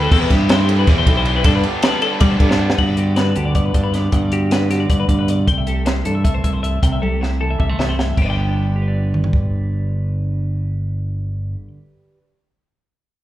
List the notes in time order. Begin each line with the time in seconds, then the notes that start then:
Already playing: G3 D4 G4 B4
0.02 A4
0.11 E2 E3 G3 C4 E4 A4, kick, crash
0.21 B4
0.30 G2 G4, kick, snare, ride
0.49 E3 G3 C4 E4 C5, snare, ride
0.69 A4, ride
0.79 B4
0.87 E2 E3 G3 C4 E4 D5, kick, snare, ride
0.98 C5
1.06 B1 G3 C4 E4 A4, kick, ride
1.17 C5
1.25 E3 G3 C4 E4, ride
1.36 B4
1.44 G2 D3 G3 B3 D4 A4, kick, ride
1.55 B4
1.63 G4, ride
1.83 G2 D3 G3 B3 D4 B4, snare, ride
2.02 A4, ride
2.12 B4
2.20 D3 G3 B3 D4 D5, kick, ride
2.31 C5
2.40 G2 G3 B3 D4 A4, kick, ride
2.49 C5, snare
2.59 D3 G3 B3 D4
2.69 B4, snare
2.78 G2 D3 B3 D4 F#4 F#5, kick, crash
2.88 D5
2.97 F#4 G4, closed hi-hat
3.16 D4 B4, snare, closed hi-hat
3.36 D2 D3 F#4 G4, closed hi-hat
3.45 D5
3.55 G2 B3 D5, kick, closed hi-hat
3.65 B4
3.74 D2 G2 D4 D5, kick, closed hi-hat
3.84 B4
3.94 B3 D5, snare, closed hi-hat
4.12 G2 B3 F#5, kick, closed hi-hat
4.22 D5
4.32 F#4 G4, closed hi-hat
4.51 D4 B4, snare, closed hi-hat
4.70 D3 F#4 G4, snare, closed hi-hat
4.80 D5
4.90 G2 D5, kick, closed hi-hat
5.00 B4
5.08 G2 A2 D5, kick, closed hi-hat
5.19 B4
5.28 B2 D5, closed hi-hat
5.47 C2 C3 A3 G5, kick, closed hi-hat
5.58 E5
5.67 G4 A4, closed hi-hat
5.86 E4 C5, snare, closed hi-hat
6.05 G2 E3 A4, closed hi-hat
6.15 E5
6.24 C2 A3 E5, kick, closed hi-hat
6.34 C5
6.43 C2 G2 E4 E5, kick, closed hi-hat
6.53 C5
6.63 A3 E5, closed hi-hat
6.82 C2 C3 A3 G5, kick, closed hi-hat
6.93 E5
7.02 G4 A4, high tom
7.21 E4 C5, snare
7.40 E3 A4
7.51 E5
7.58 C2 G3 E5, kick
7.69 A3 C5
7.79 C2 G2 E4 E5, snare
7.89 C5
7.99 A3 E5, snare
8.17 G1 G2 G4, kick, crash
8.22 B4 D5
8.28 D3 G5
8.38 B3
8.48 D4
8.76 G4
8.82 B4
8.88 D5
9.14 mid tom
9.24 floor tom
9.33 kick